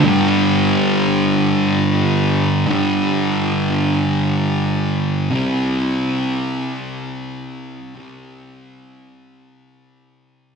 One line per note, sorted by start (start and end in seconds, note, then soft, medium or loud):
0.04 2.65 G2 medium
0.04 2.66 D3 medium
0.08 2.71 G3 medium
2.67 5.29 G2 medium
2.67 5.30 D3 medium
2.67 5.33 G3 medium
5.31 7.95 C3 medium
5.31 7.97 G3 medium
5.35 7.99 C4 medium
7.95 10.55 C3 medium
7.95 10.55 G3 medium
7.99 10.55 C4 medium